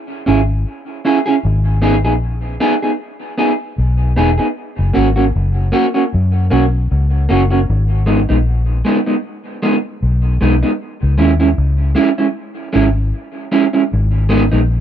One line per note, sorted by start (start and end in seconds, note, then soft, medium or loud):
0.26 0.64 G#1 medium
0.26 0.39 C#4 medium
0.26 0.39 E4 medium
0.26 0.40 G#4 medium
1.05 1.17 C#4 medium
1.05 1.18 E4 medium
1.05 1.18 G#4 medium
1.26 1.35 C#4 medium
1.26 1.34 E4 medium
1.26 1.34 G#4 medium
1.45 2.06 G#1 loud
1.82 1.95 B3 medium
1.82 1.95 D#4 medium
1.82 1.95 G#4 medium
2.05 2.57 A#1 medium
2.05 2.13 B3 soft
2.05 2.12 D#4 medium
2.05 2.12 G#4 medium
2.60 2.73 B3 medium
2.60 2.73 D#4 loud
2.60 2.73 G#4 loud
2.82 2.91 B3 soft
2.82 2.90 D#4 medium
2.82 2.90 G#4 medium
3.38 3.51 B3 medium
3.38 3.51 D#4 medium
3.38 3.51 G#4 medium
3.78 4.14 B1 loud
4.16 4.37 E1 medium
4.16 4.29 B3 medium
4.16 4.29 D#4 medium
4.16 4.30 G#4 medium
4.38 4.46 B3 soft
4.38 4.46 D#4 medium
4.38 4.46 G#4 medium
4.79 4.94 F#1 medium
4.93 5.32 G#1 medium
4.93 5.07 A#3 medium
4.93 5.07 C#4 medium
4.93 5.07 F#4 medium
5.16 5.24 A#3 medium
5.16 5.24 C#4 medium
5.16 5.24 F#4 medium
5.36 5.71 F#1 medium
5.72 5.85 A#3 medium
5.72 5.85 C#4 medium
5.72 5.85 F#4 medium
5.94 6.03 A#3 medium
5.94 6.02 C#4 medium
5.94 6.02 F#4 medium
6.14 6.49 F#2 loud
6.50 6.87 B1 medium
6.50 6.63 A#3 medium
6.50 6.63 C#4 medium
6.50 6.64 F#4 medium
6.92 7.27 C#2 medium
7.29 7.66 F#1 medium
7.29 7.41 A#3 medium
7.29 7.42 C#4 medium
7.29 7.42 F#4 medium
7.51 7.59 A#3 medium
7.51 7.58 C#4 medium
7.51 7.58 F#4 medium
7.70 8.25 G#1 loud
8.06 8.19 G#3 medium
8.06 8.19 B3 medium
8.06 8.19 D#4 medium
8.29 8.81 A#1 medium
8.29 8.37 G#3 soft
8.29 8.37 B3 medium
8.29 8.36 D#4 medium
8.85 8.97 G#3 medium
8.85 8.98 B3 medium
8.85 8.98 D#4 medium
9.06 9.14 G#3 soft
9.06 9.14 B3 medium
9.06 9.14 D#4 medium
9.62 9.75 G#3 medium
9.62 9.75 B3 medium
9.62 9.75 D#4 medium
10.03 10.38 B1 medium
10.41 10.61 B1 medium
10.41 10.53 G#3 medium
10.41 10.54 B3 medium
10.41 10.54 D#4 medium
10.63 10.71 G#3 medium
10.63 10.70 B3 medium
10.63 10.70 D#4 medium
11.03 11.20 C#2 medium
11.18 11.55 D#2 medium
11.18 11.31 G#3 medium
11.18 11.31 C#4 medium
11.18 11.31 E4 medium
11.40 11.48 G#3 medium
11.40 11.48 C#4 medium
11.40 11.48 E4 medium
11.58 11.94 C#2 medium
11.95 12.08 G#3 medium
11.95 12.09 C#4 medium
11.95 12.09 E4 loud
12.18 12.26 G#3 soft
12.18 12.26 C#4 medium
12.18 12.26 E4 medium
12.73 13.11 G#1 medium
12.73 12.86 G#3 medium
12.73 12.86 C#4 medium
12.73 12.87 E4 medium
13.52 13.64 G#3 medium
13.52 13.65 C#4 medium
13.52 13.65 E4 medium
13.73 13.82 G#3 medium
13.73 13.81 C#4 medium
13.73 13.81 E4 medium
13.93 14.49 G#1 loud
14.29 14.42 G#3 medium
14.29 14.43 B3 loud
14.29 14.43 D#4 medium
14.52 14.80 A#1 medium
14.52 14.60 G#3 medium
14.52 14.60 B3 medium
14.52 14.59 D#4 medium